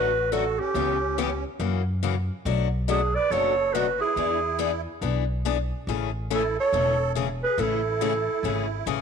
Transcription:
0.00 0.57 A1 medium
0.00 0.10 F#3 medium
0.00 0.10 A3 medium
0.00 0.10 C#4 medium
0.00 0.11 F#4 medium
0.00 0.29 F#4 medium
0.00 0.34 B4 loud
0.32 0.43 D3 medium
0.32 0.43 F#3 medium
0.32 0.44 A3 medium
0.32 0.44 C#4 loud
0.32 0.59 F#4 medium
0.32 0.43 F#4 medium
0.32 0.60 A4 medium
0.59 1.44 C#4 medium
0.59 1.44 G4 medium
0.74 1.43 C#2 medium
0.74 0.96 C#3 medium
0.74 0.96 E3 medium
0.74 0.96 B3 medium
0.74 0.96 C#4 medium
0.74 0.96 G4 medium
1.18 1.29 C#3 medium
1.18 1.29 E3 medium
1.18 1.29 B3 medium
1.18 1.29 C#4 medium
1.18 1.29 G4 medium
1.59 2.28 F#2 medium
1.59 1.81 C#3 medium
1.59 1.81 E3 medium
1.59 1.81 A#3 medium
1.59 1.81 C#4 medium
1.59 1.82 F#4 medium
2.03 2.14 C#3 medium
2.03 2.14 E3 medium
2.03 2.14 A#3 medium
2.03 2.14 C#4 loud
2.03 2.15 F#4 loud
2.45 3.14 B1 medium
2.45 2.67 B2 medium
2.45 2.67 F#3 medium
2.45 2.67 A3 medium
2.45 2.67 D4 medium
2.45 2.67 F#4 medium
2.88 2.99 B2 loud
2.88 3.00 F#3 medium
2.88 3.00 A3 medium
2.88 3.00 D4 loud
2.88 3.14 D4 medium
2.88 3.00 F#4 loud
2.88 3.16 G#4 medium
3.15 3.31 B4 medium
3.15 3.33 D5 loud
3.30 3.99 F#1 medium
3.30 3.52 B2 medium
3.30 3.53 F#3 medium
3.30 3.53 A3 medium
3.30 3.53 D4 medium
3.30 3.53 F#4 medium
3.30 3.73 A4 medium
3.30 3.75 C#5 loud
3.73 3.85 B2 medium
3.73 3.86 F#3 medium
3.73 3.86 A3 medium
3.73 3.86 D4 loud
3.73 4.00 F#4 medium
3.73 3.86 F#4 medium
3.73 4.00 B4 medium
3.99 4.81 E4 medium
3.99 4.82 G#4 medium
4.16 4.85 E2 medium
4.16 4.38 E3 medium
4.16 4.38 B3 medium
4.16 4.38 D4 medium
4.16 4.39 G#4 medium
4.59 4.70 E3 medium
4.59 4.70 B3 medium
4.59 4.71 D4 medium
4.59 4.71 G#4 loud
5.01 5.70 B1 medium
5.01 5.23 E3 medium
5.01 5.23 B3 medium
5.01 5.24 D4 medium
5.01 5.24 G#4 medium
5.45 5.56 E3 medium
5.45 5.56 B3 loud
5.45 5.57 D4 loud
5.45 5.57 G#4 loud
5.87 6.56 A1 medium
5.87 6.09 C#3 medium
5.87 6.09 E3 medium
5.87 6.09 A3 medium
5.87 6.09 C#4 medium
5.87 6.10 G#4 medium
6.30 6.42 C#3 medium
6.30 6.42 E3 medium
6.30 6.42 A3 medium
6.30 6.42 C#4 loud
6.30 6.57 E4 medium
6.30 6.42 G#4 loud
6.30 6.57 A4 medium
6.58 7.12 A4 medium
6.58 7.13 C#5 loud
6.73 7.41 E1 medium
6.73 6.94 C#3 medium
6.73 6.94 E3 medium
6.73 6.94 A3 medium
6.73 6.95 C#4 medium
6.73 6.95 G#4 medium
7.15 7.27 C#3 medium
7.15 7.27 E3 medium
7.15 7.27 A3 loud
7.15 7.27 C#4 medium
7.15 7.27 G#4 loud
7.44 7.58 G#4 medium
7.44 7.61 B4 medium
7.58 8.26 A1 medium
7.58 7.79 C#3 medium
7.58 7.80 E3 medium
7.58 7.80 A3 medium
7.58 7.80 C#4 medium
7.58 8.87 E4 medium
7.58 7.80 G#4 medium
7.58 8.87 A4 medium
8.01 8.12 C#3 medium
8.01 8.12 E3 medium
8.01 8.13 A3 medium
8.01 8.13 C#4 loud
8.01 8.13 G#4 loud
8.43 8.80 G#1 medium
8.43 8.65 C#3 medium
8.43 8.66 E3 medium
8.43 8.65 A3 medium
8.43 8.65 C#4 medium
8.43 8.66 G#4 medium
8.86 9.02 A1 medium
8.86 8.98 C#3 medium
8.86 8.98 E3 medium
8.86 8.98 A3 medium
8.86 8.98 C#4 loud
8.86 8.98 G#4 loud

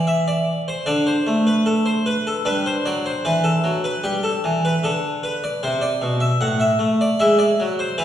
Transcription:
0.00 0.52 E3 medium
0.07 0.27 E5 medium
0.28 0.61 D5 medium
0.68 0.87 C5 medium
0.86 1.15 D3 medium
0.86 2.42 D4 soft
0.86 1.06 D5 medium
1.07 1.46 C5 medium
1.27 2.13 A3 medium
1.47 1.67 B4 medium
1.66 1.86 A4 medium
1.86 2.06 C5 medium
2.06 2.26 B4 medium
2.27 2.46 A4 medium
2.45 2.74 G3 medium
2.45 5.58 D4 soft
2.45 2.66 B4 medium
2.66 2.86 C5 medium
2.86 3.14 F#3 medium
2.86 3.05 D5 medium
3.06 3.25 C5 medium
3.25 3.53 E3 medium
3.25 3.45 B4 medium
3.44 3.84 A4 medium
3.64 3.93 F#3 medium
3.84 4.05 B4 medium
4.04 4.33 G3 medium
4.04 4.24 G4 medium
4.23 4.58 A4 medium
4.44 4.73 E3 medium
4.65 4.84 B4 medium
4.84 5.40 D3 medium
4.84 5.24 A4 medium
5.23 5.43 B4 medium
5.44 5.63 D5 medium
5.63 5.91 C3 medium
5.63 5.82 C5 medium
5.82 6.15 D5 medium
6.02 6.30 B2 medium
6.20 6.41 E5 medium
6.41 6.70 A2 medium
6.41 6.61 F#5 medium
6.60 7.00 E5 medium
6.79 7.08 A3 medium
7.01 7.20 D5 medium
7.20 7.48 G#3 medium
7.20 8.05 E4 soft
7.20 7.39 E5 medium
7.39 7.72 D5 medium
7.60 7.88 F#3 medium
7.79 7.98 C5 medium
7.98 8.05 E3 medium
7.98 8.05 B4 medium

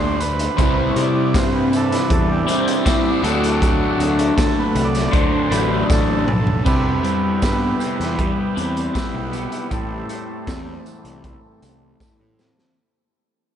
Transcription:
0.00 0.47 D2 medium
0.00 0.19 D3 medium
0.00 0.19 G3 medium
0.00 0.18 A3 medium
0.00 0.18 D4 medium
0.00 0.22 C5 medium
0.20 0.91 B4 medium
0.20 closed hi-hat medium
0.20 tambourine medium
0.39 closed hi-hat medium
0.57 0.89 C2 medium
0.57 2.46 C3 medium
0.57 2.46 G3 medium
0.57 2.46 C4 loud
0.57 2.46 E4 loud
0.57 kick medium
0.57 closed hi-hat medium
0.57 tambourine medium
0.91 0.97 C#5 medium
0.96 1.34 C3 medium
0.96 1.37 D5 medium
0.96 closed hi-hat medium
0.96 tambourine soft
1.34 1.95 G2 medium
1.34 1.55 C5 medium
1.34 kick loud
1.34 snare loud
1.34 closed hi-hat medium
1.34 tambourine medium
1.55 1.69 B4 medium
1.71 1.74 B4 medium
1.71 closed hi-hat medium
1.71 tambourine medium
1.76 3.22 E3 medium
1.76 3.22 D4 medium
1.76 1.94 A4 medium
1.92 2.10 B4 medium
1.92 snare soft
1.92 closed hi-hat medium
2.10 2.41 E2 medium
2.10 2.31 A4 medium
2.10 kick loud
2.10 closed hi-hat medium
2.32 3.03 G4 medium
2.47 2.83 C3 medium
2.47 2.84 G3 medium
2.47 2.84 C4 medium
2.47 2.83 E4 medium
2.47 closed hi-hat medium
2.47 tambourine medium
2.68 closed hi-hat medium
2.84 3.21 C3 medium
2.84 3.22 G3 medium
2.84 3.22 C4 medium
2.84 3.22 E4 medium
2.84 kick loud
2.84 snare loud
2.84 closed hi-hat medium
2.84 tambourine medium
3.22 3.85 D2 loud
3.22 5.10 D3 medium
3.22 5.11 F#3 loud
3.22 4.34 F#3 medium
3.22 5.12 A3 loud
3.22 4.34 A3 medium
3.22 5.12 D4 medium
3.22 closed hi-hat medium
3.22 tambourine medium
3.26 4.35 D4 medium
3.44 closed hi-hat medium
3.62 kick loud
3.62 closed hi-hat medium
3.62 tambourine medium
3.99 4.30 D2 medium
3.99 closed hi-hat medium
4.19 closed hi-hat medium
4.36 4.63 A4 medium
4.36 kick loud
4.36 snare loud
4.36 closed hi-hat medium
4.36 tambourine medium
4.59 4.88 B4 medium
4.75 5.06 C2 medium
4.75 closed hi-hat medium
4.85 5.13 D5 loud
4.95 snare soft
4.95 closed hi-hat medium
5.11 5.29 D2 medium
5.11 5.49 D3 medium
5.11 5.49 F#3 medium
5.11 5.49 A3 medium
5.11 5.49 D4 medium
5.11 5.52 C5 loud
5.11 kick loud
5.11 closed hi-hat medium
5.11 tambourine soft
5.50 5.82 A1 medium
5.50 6.26 D3 medium
5.50 6.26 F#3 medium
5.50 6.25 A3 medium
5.50 6.25 D4 medium
5.50 5.87 B4 medium
5.50 closed hi-hat medium
5.50 tambourine medium
5.90 6.25 A1 medium
5.90 6.63 A4 medium
5.90 kick loud
5.90 snare medium
5.90 tambourine medium
6.27 6.62 B1 medium
6.27 mid tom medium
6.47 floor tom medium
6.65 6.97 C2 medium
6.65 7.79 C3 medium
6.65 12.72 G3 medium
6.65 9.68 B3 medium
6.65 12.72 E4 medium
6.65 9.68 G4 medium
6.65 9.68 B4 medium
6.65 kick loud
6.65 crash medium
6.65 tambourine medium
7.03 8.17 G3 medium
7.03 closed hi-hat medium
7.42 7.73 G2 medium
7.42 9.31 B3 medium
7.42 kick loud
7.42 snare loud
7.42 closed hi-hat medium
7.42 tambourine medium
7.80 8.55 C3 medium
7.80 closed hi-hat medium
7.80 tambourine medium
8.00 8.30 E2 medium
8.00 snare soft
8.00 closed hi-hat medium
8.18 8.93 G3 medium
8.18 kick medium
8.18 closed hi-hat medium
8.18 tambourine soft
8.56 8.88 E2 medium
8.56 9.71 C3 medium
8.56 closed hi-hat medium
8.56 tambourine medium
8.77 closed hi-hat medium
8.94 9.71 G3 medium
8.94 kick loud
8.94 snare loud
8.94 closed hi-hat medium
8.94 tambourine medium
9.14 9.45 B1 medium
9.32 9.71 B3 medium
9.32 closed hi-hat medium
9.32 tambourine medium
9.52 closed hi-hat medium
9.71 10.02 A1 medium
9.71 11.62 A2 medium
9.71 12.75 A3 medium
9.71 12.74 A4 medium
9.71 12.74 C5 medium
9.71 kick medium
9.71 closed hi-hat medium
9.71 tambourine medium
10.09 11.23 A3 medium
10.09 closed hi-hat medium
10.47 10.78 E2 medium
10.47 12.38 C4 medium
10.47 kick loud
10.47 snare loud
10.47 closed hi-hat medium
10.47 tambourine medium
10.86 11.61 E3 medium
10.86 closed hi-hat medium
10.86 tambourine medium
11.05 11.35 C2 medium
11.05 closed hi-hat medium
11.24 11.99 A3 medium
11.24 kick medium
11.24 closed hi-hat medium
11.24 tambourine soft
11.62 11.93 C2 medium
11.62 12.77 E3 medium
11.62 closed hi-hat medium
11.62 tambourine medium
12.00 12.76 A3 medium
12.00 kick medium
12.00 snare soft
12.00 tambourine medium
12.20 12.50 A2 medium
12.39 12.77 C4 medium
12.39 snare medium
12.39 tambourine medium
12.59 snare medium

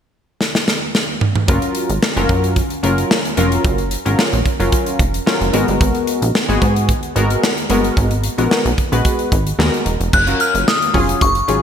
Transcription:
0.41 snare medium
0.55 snare medium
0.68 snare medium
0.95 snare medium
1.21 mid tom medium
1.36 mid tom medium
1.48 1.60 F#1 loud
1.48 1.91 F#3 medium
1.48 1.91 C#4 medium
1.48 1.91 F4 medium
1.48 1.91 A#4 medium
1.48 kick loud
1.48 closed hi-hat medium
1.62 closed hi-hat medium
1.75 closed hi-hat medium
1.90 2.00 G#1 medium
1.90 closed hi-hat medium
2.03 snare loud
2.16 2.27 F#1 loud
2.16 2.58 F#3 loud
2.16 2.58 C#4 medium
2.16 2.58 F4 medium
2.16 2.58 A#4 loud
2.16 closed hi-hat soft
2.29 2.62 F#2 loud
2.29 kick medium
2.29 closed hi-hat medium
2.44 closed hi-hat soft
2.56 kick medium
2.56 closed hi-hat medium
2.70 closed hi-hat soft
2.83 3.05 F#1 medium
2.83 3.17 F#3 medium
2.83 3.17 C#4 medium
2.83 3.17 F4 medium
2.83 3.17 A#4 loud
2.83 closed hi-hat medium
2.98 closed hi-hat medium
3.11 snare loud
3.25 closed hi-hat soft
3.37 3.59 F1 medium
3.37 3.80 F#3 medium
3.37 3.80 C#4 medium
3.37 3.80 F4 medium
3.37 3.80 A#4 loud
3.37 closed hi-hat medium
3.52 closed hi-hat medium
3.64 3.97 F#1 loud
3.64 kick loud
3.64 closed hi-hat medium
3.78 closed hi-hat soft
3.91 closed hi-hat medium
4.05 4.16 G#1 medium
4.05 4.39 F#3 medium
4.05 4.39 C#4 medium
4.05 4.39 F4 medium
4.05 4.39 A#4 medium
4.05 closed hi-hat soft
4.19 snare loud
4.33 4.43 A#1 medium
4.33 closed hi-hat soft
4.46 kick medium
4.46 closed hi-hat medium
4.59 4.70 F#1 medium
4.59 5.01 F#3 medium
4.59 5.01 C#4 medium
4.59 5.01 F4 medium
4.59 5.01 A#4 medium
4.59 closed hi-hat medium
4.72 kick medium
4.72 closed hi-hat medium
4.86 closed hi-hat medium
4.99 5.21 F1 medium
4.99 kick medium
4.99 closed hi-hat medium
5.14 closed hi-hat medium
5.26 5.54 F#3 medium
5.26 5.54 C#4 medium
5.26 5.54 F4 medium
5.26 5.53 A#4 loud
5.26 snare loud
5.41 5.51 F#1 medium
5.41 closed hi-hat soft
5.53 5.65 G#1 medium
5.53 6.30 G#3 medium
5.53 6.30 B3 medium
5.53 6.30 F#4 medium
5.53 6.30 A#4 loud
5.53 closed hi-hat medium
5.68 5.78 G1 loud
5.68 closed hi-hat soft
5.81 5.92 G#1 loud
5.81 kick loud
5.81 closed hi-hat medium
5.95 closed hi-hat soft
6.07 closed hi-hat medium
6.22 6.32 A#1 medium
6.22 closed hi-hat medium
6.35 snare loud
6.49 6.59 G#1 medium
6.49 6.90 G#3 loud
6.49 6.90 B3 medium
6.49 6.90 F#4 medium
6.49 6.90 G#4 loud
6.49 closed hi-hat soft
6.62 6.94 G#2 medium
6.62 kick medium
6.62 closed hi-hat medium
6.76 closed hi-hat medium
6.89 kick medium
6.89 closed hi-hat medium
7.03 closed hi-hat soft
7.16 7.37 G#1 medium
7.16 7.50 G#3 medium
7.16 7.50 B3 medium
7.16 7.50 F#4 medium
7.16 7.50 A#4 loud
7.16 closed hi-hat medium
7.30 closed hi-hat medium
7.44 snare loud
7.58 closed hi-hat soft
7.70 7.91 G1 medium
7.70 8.12 G#3 loud
7.70 8.13 B3 medium
7.70 8.13 F#4 medium
7.70 8.13 A#4 medium
7.70 closed hi-hat medium
7.84 closed hi-hat soft
7.97 8.29 G#1 loud
7.97 kick loud
7.97 closed hi-hat medium
8.11 closed hi-hat medium
8.24 closed hi-hat medium
8.38 8.48 A#1 medium
8.38 8.71 G#3 medium
8.38 8.71 B3 medium
8.38 8.71 F#4 medium
8.38 8.72 A#4 medium
8.38 closed hi-hat soft
8.51 snare loud
8.65 8.75 B1 medium
8.65 closed hi-hat soft
8.78 kick medium
8.78 closed hi-hat medium
8.92 9.02 A#1 medium
8.92 9.33 G#3 medium
8.92 9.33 B3 medium
8.92 9.34 F#4 medium
8.92 9.34 B4 loud
8.92 closed hi-hat medium
9.05 kick medium
9.05 closed hi-hat medium
9.19 closed hi-hat soft
9.32 9.53 G#1 medium
9.32 kick medium
9.32 closed hi-hat medium
9.47 closed hi-hat medium
9.58 9.70 D#2 loud
9.58 9.93 G#3 medium
9.58 9.93 B3 medium
9.58 9.93 F#4 medium
9.58 9.93 A#4 medium
9.58 snare loud
9.74 closed hi-hat soft
9.86 9.97 E1 medium
9.86 closed hi-hat medium
10.00 10.10 F1 loud
10.00 closed hi-hat soft
10.13 10.34 F#1 loud
10.13 10.39 F#6 loud
10.13 kick loud
10.13 crash medium
10.27 10.68 F#3 medium
10.27 10.69 C#4 medium
10.27 10.69 F4 medium
10.27 10.69 A#4 medium
10.27 closed hi-hat medium
10.40 10.68 F6 loud
10.40 closed hi-hat medium
10.54 10.64 F#1 medium
10.54 closed hi-hat medium
10.68 11.18 D#6 medium
10.68 snare loud
10.82 closed hi-hat soft
10.94 11.15 F1 loud
10.94 11.28 F#3 medium
10.94 11.28 C#4 medium
10.94 11.28 F4 medium
10.94 11.28 G#4 medium
10.94 kick medium
10.94 open hi-hat medium
11.09 closed hi-hat medium
11.21 11.42 F#1 loud
11.21 11.62 C#6 loud
11.21 kick loud
11.21 closed hi-hat medium
11.35 closed hi-hat medium
11.48 11.62 G#1 medium
11.48 11.62 F#3 medium
11.48 11.62 C#4 medium
11.48 11.62 F4 medium
11.48 11.62 G#4 medium
11.48 closed hi-hat medium

